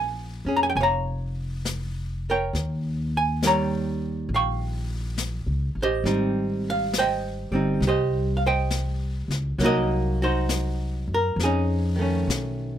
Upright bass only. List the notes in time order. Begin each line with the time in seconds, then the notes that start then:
Already playing: A#1
0.45 F2
0.75 F1
2.53 D#2
4.29 A#1
5.46 C#2
5.75 A1
6.04 G#1
7.51 G1
7.80 C2
9.28 C#2
9.58 C2
11.08 F#2
11.36 F2
12.27 B1